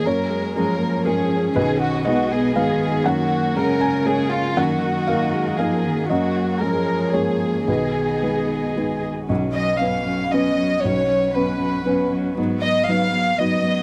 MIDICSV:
0, 0, Header, 1, 6, 480
1, 0, Start_track
1, 0, Tempo, 503356
1, 53, Time_signature, 3, 2, 24, 8
1, 5813, Tempo, 532860
1, 8693, Tempo, 511073
1, 12951, End_track
2, 0, Start_track
2, 0, Title_t, "String section"
2, 0, Program_c, 0, 48
2, 0, Note_on_c, 0, 58, 44
2, 47, Note_on_c, 0, 73, 50
2, 53, Note_on_c, 0, 68, 45
2, 1486, Note_off_c, 0, 73, 0
2, 1487, Note_off_c, 0, 58, 0
2, 1508, Note_on_c, 0, 75, 58
2, 1509, Note_on_c, 0, 59, 50
2, 2918, Note_on_c, 0, 58, 62
2, 2919, Note_on_c, 0, 73, 61
2, 2928, Note_off_c, 0, 59, 0
2, 2928, Note_off_c, 0, 75, 0
2, 4350, Note_on_c, 0, 75, 57
2, 4351, Note_on_c, 0, 70, 54
2, 4361, Note_off_c, 0, 68, 0
2, 4362, Note_off_c, 0, 73, 0
2, 5808, Note_off_c, 0, 70, 0
2, 5808, Note_off_c, 0, 75, 0
2, 5815, Note_on_c, 0, 73, 58
2, 5818, Note_on_c, 0, 68, 55
2, 7233, Note_on_c, 0, 75, 41
2, 7237, Note_on_c, 0, 59, 41
2, 7238, Note_off_c, 0, 58, 0
2, 7239, Note_off_c, 0, 73, 0
2, 8683, Note_on_c, 0, 61, 46
2, 8687, Note_on_c, 0, 71, 45
2, 8690, Note_on_c, 0, 66, 45
2, 8692, Note_off_c, 0, 75, 0
2, 8693, Note_off_c, 0, 59, 0
2, 8697, Note_off_c, 0, 68, 0
2, 11546, Note_off_c, 0, 61, 0
2, 11585, Note_on_c, 0, 59, 47
2, 12951, Note_off_c, 0, 59, 0
2, 12951, Note_off_c, 0, 66, 0
2, 12951, Note_off_c, 0, 71, 0
2, 12951, End_track
3, 0, Start_track
3, 0, Title_t, "Violin section"
3, 0, Program_c, 1, 48
3, 51, Note_on_c, 1, 70, 51
3, 533, Note_off_c, 1, 70, 0
3, 545, Note_on_c, 1, 70, 51
3, 1011, Note_off_c, 1, 70, 0
3, 1018, Note_on_c, 1, 68, 47
3, 1482, Note_off_c, 1, 68, 0
3, 1494, Note_on_c, 1, 68, 61
3, 1724, Note_off_c, 1, 68, 0
3, 1733, Note_on_c, 1, 66, 64
3, 1955, Note_off_c, 1, 66, 0
3, 1967, Note_on_c, 1, 66, 61
3, 2197, Note_off_c, 1, 66, 0
3, 2205, Note_on_c, 1, 68, 60
3, 2432, Note_off_c, 1, 68, 0
3, 2443, Note_on_c, 1, 68, 54
3, 2911, Note_off_c, 1, 68, 0
3, 2931, Note_on_c, 1, 66, 62
3, 3401, Note_on_c, 1, 70, 61
3, 3407, Note_off_c, 1, 66, 0
3, 3880, Note_off_c, 1, 70, 0
3, 3885, Note_on_c, 1, 68, 65
3, 4122, Note_off_c, 1, 68, 0
3, 4124, Note_on_c, 1, 65, 74
3, 4364, Note_off_c, 1, 65, 0
3, 4374, Note_on_c, 1, 66, 62
3, 5327, Note_on_c, 1, 68, 47
3, 5335, Note_off_c, 1, 66, 0
3, 5799, Note_on_c, 1, 66, 53
3, 5813, Note_off_c, 1, 68, 0
3, 6261, Note_off_c, 1, 66, 0
3, 6272, Note_on_c, 1, 70, 50
3, 6743, Note_on_c, 1, 68, 46
3, 6750, Note_off_c, 1, 70, 0
3, 7217, Note_off_c, 1, 68, 0
3, 7227, Note_on_c, 1, 68, 46
3, 8480, Note_off_c, 1, 68, 0
3, 8925, Note_on_c, 1, 75, 65
3, 9154, Note_off_c, 1, 75, 0
3, 9167, Note_on_c, 1, 77, 55
3, 9651, Note_on_c, 1, 75, 65
3, 9657, Note_off_c, 1, 77, 0
3, 10127, Note_on_c, 1, 73, 74
3, 10137, Note_off_c, 1, 75, 0
3, 10612, Note_on_c, 1, 71, 61
3, 10617, Note_off_c, 1, 73, 0
3, 11341, Note_off_c, 1, 71, 0
3, 11826, Note_on_c, 1, 75, 69
3, 12048, Note_off_c, 1, 75, 0
3, 12060, Note_on_c, 1, 77, 69
3, 12539, Note_off_c, 1, 77, 0
3, 12541, Note_on_c, 1, 75, 63
3, 12951, Note_off_c, 1, 75, 0
3, 12951, End_track
4, 0, Start_track
4, 0, Title_t, "Felt piano"
4, 0, Program_c, 2, 0
4, 0, Control_c, 2, 64, 127
4, 53, Note_on_c, 2, 42, 52
4, 66, Note_on_c, 2, 73, 77
4, 73, Control_c, 2, 64, 0
4, 198, Control_c, 2, 64, 127
4, 520, Note_off_c, 2, 42, 0
4, 536, Note_on_c, 2, 56, 39
4, 538, Note_on_c, 2, 61, 42
4, 543, Note_on_c, 2, 70, 48
4, 978, Note_off_c, 2, 56, 0
4, 979, Note_off_c, 2, 61, 0
4, 981, Note_off_c, 2, 70, 0
4, 983, Note_off_c, 2, 73, 0
4, 1008, Note_on_c, 2, 70, 77
4, 1016, Note_on_c, 2, 56, 44
4, 1019, Note_on_c, 2, 61, 45
4, 1452, Note_off_c, 2, 56, 0
4, 1453, Note_off_c, 2, 61, 0
4, 1453, Note_off_c, 2, 70, 0
4, 1486, Note_on_c, 2, 71, 82
4, 1487, Note_on_c, 2, 35, 63
4, 1508, Control_c, 2, 64, 0
4, 1650, Control_c, 2, 64, 127
4, 1928, Note_off_c, 2, 71, 0
4, 1948, Note_off_c, 2, 35, 0
4, 1952, Note_on_c, 2, 75, 89
4, 1964, Note_on_c, 2, 63, 46
4, 1966, Note_on_c, 2, 56, 44
4, 1970, Note_on_c, 2, 71, 49
4, 2399, Note_off_c, 2, 75, 0
4, 2401, Note_off_c, 2, 63, 0
4, 2402, Note_off_c, 2, 56, 0
4, 2404, Note_off_c, 2, 71, 0
4, 2437, Note_on_c, 2, 63, 50
4, 2438, Note_on_c, 2, 77, 83
4, 2439, Note_on_c, 2, 56, 53
4, 2443, Note_on_c, 2, 71, 59
4, 2661, Note_off_c, 2, 77, 0
4, 2880, Note_off_c, 2, 63, 0
4, 2881, Note_off_c, 2, 56, 0
4, 2883, Note_off_c, 2, 71, 0
4, 2908, Note_on_c, 2, 42, 62
4, 2914, Note_on_c, 2, 78, 88
4, 2938, Control_c, 2, 64, 0
4, 3075, Control_c, 2, 64, 127
4, 3381, Note_off_c, 2, 42, 0
4, 3397, Note_on_c, 2, 56, 47
4, 3400, Note_on_c, 2, 61, 50
4, 3406, Note_on_c, 2, 70, 54
4, 3601, Note_off_c, 2, 78, 0
4, 3631, Note_on_c, 2, 80, 87
4, 3840, Note_off_c, 2, 56, 0
4, 3841, Note_off_c, 2, 61, 0
4, 3844, Note_off_c, 2, 70, 0
4, 3869, Note_on_c, 2, 56, 44
4, 3873, Note_on_c, 2, 61, 50
4, 3881, Note_on_c, 2, 70, 55
4, 4318, Note_off_c, 2, 56, 0
4, 4318, Note_off_c, 2, 80, 0
4, 4320, Note_off_c, 2, 61, 0
4, 4324, Note_off_c, 2, 70, 0
4, 4355, Note_on_c, 2, 42, 65
4, 4359, Note_on_c, 2, 78, 92
4, 4379, Control_c, 2, 64, 0
4, 4518, Control_c, 2, 64, 127
4, 4810, Note_off_c, 2, 78, 0
4, 4828, Note_off_c, 2, 42, 0
4, 4838, Note_on_c, 2, 77, 83
4, 4848, Note_on_c, 2, 58, 47
4, 4853, Note_on_c, 2, 63, 47
4, 4854, Note_on_c, 2, 70, 53
4, 5290, Note_off_c, 2, 77, 0
4, 5291, Note_off_c, 2, 58, 0
4, 5294, Note_off_c, 2, 63, 0
4, 5295, Note_off_c, 2, 70, 0
4, 5327, Note_on_c, 2, 77, 76
4, 5337, Note_on_c, 2, 58, 47
4, 5341, Note_on_c, 2, 63, 47
4, 5347, Note_on_c, 2, 70, 53
4, 5779, Note_off_c, 2, 77, 0
4, 5780, Note_off_c, 2, 58, 0
4, 5782, Note_off_c, 2, 63, 0
4, 5785, Note_off_c, 2, 70, 0
4, 5812, Note_on_c, 2, 75, 65
4, 5821, Note_on_c, 2, 42, 66
4, 5832, Control_c, 2, 64, 0
4, 5983, Control_c, 2, 64, 127
4, 6268, Note_off_c, 2, 42, 0
4, 6281, Note_on_c, 2, 56, 41
4, 6283, Note_on_c, 2, 61, 38
4, 6293, Note_on_c, 2, 70, 41
4, 6716, Note_off_c, 2, 75, 0
4, 6718, Note_off_c, 2, 56, 0
4, 6719, Note_off_c, 2, 61, 0
4, 6724, Note_off_c, 2, 70, 0
4, 6748, Note_on_c, 2, 73, 66
4, 6755, Note_on_c, 2, 56, 36
4, 6756, Note_on_c, 2, 61, 38
4, 6758, Note_on_c, 2, 70, 40
4, 7202, Note_off_c, 2, 73, 0
4, 7204, Note_off_c, 2, 56, 0
4, 7204, Note_off_c, 2, 61, 0
4, 7205, Note_off_c, 2, 70, 0
4, 7235, Note_on_c, 2, 35, 46
4, 7243, Note_on_c, 2, 71, 57
4, 7256, Control_c, 2, 64, 0
4, 7398, Control_c, 2, 64, 127
4, 7713, Note_off_c, 2, 35, 0
4, 7723, Note_off_c, 2, 71, 0
4, 7732, Note_on_c, 2, 56, 33
4, 7737, Note_on_c, 2, 63, 34
4, 7737, Note_on_c, 2, 71, 39
4, 8182, Note_off_c, 2, 56, 0
4, 8184, Note_off_c, 2, 63, 0
4, 8184, Note_off_c, 2, 71, 0
4, 8216, Note_on_c, 2, 56, 34
4, 8218, Note_on_c, 2, 63, 33
4, 8223, Note_on_c, 2, 71, 36
4, 8658, Note_off_c, 2, 56, 0
4, 8659, Note_off_c, 2, 63, 0
4, 8662, Note_off_c, 2, 71, 0
4, 8694, Note_on_c, 2, 35, 52
4, 8711, Control_c, 2, 64, 0
4, 8885, Control_c, 2, 64, 127
4, 9162, Note_off_c, 2, 35, 0
4, 9179, Note_on_c, 2, 59, 35
4, 9187, Note_on_c, 2, 71, 41
4, 9188, Note_on_c, 2, 61, 35
4, 9626, Note_off_c, 2, 59, 0
4, 9630, Note_off_c, 2, 61, 0
4, 9630, Note_off_c, 2, 71, 0
4, 9672, Note_on_c, 2, 59, 35
4, 9673, Note_on_c, 2, 61, 39
4, 9677, Note_on_c, 2, 71, 37
4, 10111, Note_off_c, 2, 59, 0
4, 10111, Note_off_c, 2, 61, 0
4, 10113, Note_off_c, 2, 71, 0
4, 10151, Note_on_c, 2, 35, 52
4, 10161, Control_c, 2, 64, 0
4, 10328, Control_c, 2, 64, 127
4, 10615, Note_off_c, 2, 35, 0
4, 10628, Note_on_c, 2, 59, 37
4, 10630, Note_on_c, 2, 61, 38
4, 10638, Note_on_c, 2, 71, 37
4, 11069, Note_off_c, 2, 59, 0
4, 11070, Note_off_c, 2, 61, 0
4, 11074, Note_off_c, 2, 71, 0
4, 11103, Note_on_c, 2, 59, 36
4, 11107, Note_on_c, 2, 71, 41
4, 11109, Note_on_c, 2, 61, 42
4, 11550, Note_off_c, 2, 59, 0
4, 11552, Note_off_c, 2, 71, 0
4, 11553, Note_off_c, 2, 61, 0
4, 11587, Note_on_c, 2, 44, 51
4, 11607, Control_c, 2, 64, 0
4, 11753, Control_c, 2, 64, 127
4, 12051, Note_off_c, 2, 44, 0
4, 12065, Note_on_c, 2, 63, 41
4, 12069, Note_on_c, 2, 54, 36
4, 12073, Note_on_c, 2, 71, 41
4, 12504, Note_off_c, 2, 63, 0
4, 12506, Note_off_c, 2, 54, 0
4, 12508, Note_off_c, 2, 71, 0
4, 12551, Note_on_c, 2, 54, 38
4, 12552, Note_on_c, 2, 63, 36
4, 12556, Note_on_c, 2, 71, 45
4, 12951, Note_off_c, 2, 54, 0
4, 12951, Note_off_c, 2, 63, 0
4, 12951, Note_off_c, 2, 71, 0
4, 12951, End_track
5, 0, Start_track
5, 0, Title_t, "Viola"
5, 0, Program_c, 3, 41
5, 50, Note_on_c, 3, 58, 55
5, 282, Note_on_c, 3, 56, 55
5, 296, Note_off_c, 3, 58, 0
5, 514, Note_off_c, 3, 56, 0
5, 520, Note_on_c, 3, 56, 66
5, 750, Note_off_c, 3, 56, 0
5, 756, Note_on_c, 3, 58, 50
5, 1005, Note_on_c, 3, 61, 59
5, 1019, Note_off_c, 3, 58, 0
5, 1248, Note_off_c, 3, 61, 0
5, 1256, Note_on_c, 3, 61, 59
5, 1965, Note_on_c, 3, 59, 66
5, 1979, Note_off_c, 3, 61, 0
5, 2918, Note_on_c, 3, 58, 67
5, 2932, Note_off_c, 3, 59, 0
5, 3385, Note_on_c, 3, 61, 72
5, 3399, Note_off_c, 3, 58, 0
5, 3622, Note_off_c, 3, 61, 0
5, 3628, Note_on_c, 3, 61, 60
5, 4356, Note_on_c, 3, 58, 54
5, 4370, Note_off_c, 3, 61, 0
5, 4841, Note_off_c, 3, 58, 0
5, 4846, Note_on_c, 3, 58, 65
5, 5083, Note_on_c, 3, 56, 56
5, 5098, Note_off_c, 3, 58, 0
5, 5329, Note_on_c, 3, 58, 59
5, 5343, Note_off_c, 3, 56, 0
5, 5800, Note_off_c, 3, 58, 0
5, 5806, Note_on_c, 3, 58, 54
5, 6270, Note_on_c, 3, 56, 55
5, 6283, Note_off_c, 3, 58, 0
5, 6744, Note_on_c, 3, 58, 45
5, 6758, Note_off_c, 3, 56, 0
5, 7230, Note_on_c, 3, 59, 47
5, 7244, Note_off_c, 3, 58, 0
5, 8507, Note_off_c, 3, 59, 0
5, 8684, Note_on_c, 3, 61, 49
5, 8925, Note_off_c, 3, 61, 0
5, 8933, Note_on_c, 3, 61, 40
5, 9160, Note_off_c, 3, 61, 0
5, 9166, Note_on_c, 3, 61, 47
5, 9406, Note_off_c, 3, 61, 0
5, 9412, Note_on_c, 3, 61, 39
5, 9648, Note_off_c, 3, 61, 0
5, 9654, Note_on_c, 3, 61, 46
5, 9886, Note_off_c, 3, 61, 0
5, 9891, Note_on_c, 3, 61, 44
5, 10120, Note_off_c, 3, 61, 0
5, 10126, Note_on_c, 3, 61, 43
5, 10359, Note_off_c, 3, 61, 0
5, 10364, Note_on_c, 3, 61, 40
5, 10607, Note_off_c, 3, 61, 0
5, 10612, Note_on_c, 3, 61, 43
5, 10839, Note_off_c, 3, 61, 0
5, 10845, Note_on_c, 3, 61, 40
5, 11090, Note_off_c, 3, 61, 0
5, 11100, Note_on_c, 3, 61, 47
5, 11337, Note_off_c, 3, 61, 0
5, 11342, Note_on_c, 3, 61, 43
5, 11582, Note_off_c, 3, 61, 0
5, 11588, Note_on_c, 3, 59, 51
5, 11823, Note_off_c, 3, 59, 0
5, 11833, Note_on_c, 3, 59, 45
5, 12058, Note_off_c, 3, 59, 0
5, 12064, Note_on_c, 3, 59, 47
5, 12289, Note_off_c, 3, 59, 0
5, 12295, Note_on_c, 3, 59, 40
5, 12533, Note_off_c, 3, 59, 0
5, 12541, Note_on_c, 3, 59, 43
5, 12773, Note_off_c, 3, 59, 0
5, 12784, Note_on_c, 3, 59, 41
5, 12951, Note_off_c, 3, 59, 0
5, 12951, End_track
6, 0, Start_track
6, 0, Title_t, "Cello"
6, 0, Program_c, 4, 42
6, 69, Note_on_c, 4, 54, 59
6, 544, Note_on_c, 4, 53, 49
6, 558, Note_off_c, 4, 54, 0
6, 1475, Note_off_c, 4, 53, 0
6, 1480, Note_on_c, 4, 51, 59
6, 1959, Note_on_c, 4, 47, 54
6, 1973, Note_off_c, 4, 51, 0
6, 2429, Note_on_c, 4, 51, 66
6, 2443, Note_off_c, 4, 47, 0
6, 3415, Note_on_c, 4, 49, 59
6, 3429, Note_off_c, 4, 51, 0
6, 4356, Note_off_c, 4, 49, 0
6, 4361, Note_on_c, 4, 51, 68
6, 4599, Note_off_c, 4, 51, 0
6, 4604, Note_on_c, 4, 51, 53
6, 5314, Note_off_c, 4, 51, 0
6, 5337, Note_on_c, 4, 53, 64
6, 5583, Note_on_c, 4, 51, 63
6, 5597, Note_off_c, 4, 53, 0
6, 5827, Note_on_c, 4, 54, 59
6, 5840, Note_off_c, 4, 51, 0
6, 6292, Note_on_c, 4, 53, 47
6, 6305, Note_off_c, 4, 54, 0
6, 7232, Note_off_c, 4, 53, 0
6, 7237, Note_on_c, 4, 51, 46
6, 8485, Note_off_c, 4, 51, 0
6, 8693, Note_on_c, 4, 54, 50
6, 8930, Note_off_c, 4, 54, 0
6, 8937, Note_on_c, 4, 54, 44
6, 9170, Note_off_c, 4, 54, 0
6, 9176, Note_on_c, 4, 54, 37
6, 9407, Note_off_c, 4, 54, 0
6, 9413, Note_on_c, 4, 54, 33
6, 9651, Note_off_c, 4, 54, 0
6, 9656, Note_on_c, 4, 54, 39
6, 9895, Note_off_c, 4, 54, 0
6, 9901, Note_on_c, 4, 54, 43
6, 10138, Note_off_c, 4, 54, 0
6, 10143, Note_on_c, 4, 54, 47
6, 10380, Note_off_c, 4, 54, 0
6, 10394, Note_on_c, 4, 54, 44
6, 10625, Note_off_c, 4, 54, 0
6, 10643, Note_on_c, 4, 54, 36
6, 10869, Note_off_c, 4, 54, 0
6, 10876, Note_on_c, 4, 54, 39
6, 11095, Note_off_c, 4, 54, 0
6, 11101, Note_on_c, 4, 54, 43
6, 11340, Note_off_c, 4, 54, 0
6, 11347, Note_on_c, 4, 54, 43
6, 11580, Note_off_c, 4, 54, 0
6, 11586, Note_on_c, 4, 54, 46
6, 11822, Note_off_c, 4, 54, 0
6, 11839, Note_on_c, 4, 54, 39
6, 12056, Note_off_c, 4, 54, 0
6, 12061, Note_on_c, 4, 54, 41
6, 12297, Note_off_c, 4, 54, 0
6, 12305, Note_on_c, 4, 54, 42
6, 12529, Note_off_c, 4, 54, 0
6, 12535, Note_on_c, 4, 54, 45
6, 12769, Note_off_c, 4, 54, 0
6, 12780, Note_on_c, 4, 54, 44
6, 12951, Note_off_c, 4, 54, 0
6, 12951, End_track
0, 0, End_of_file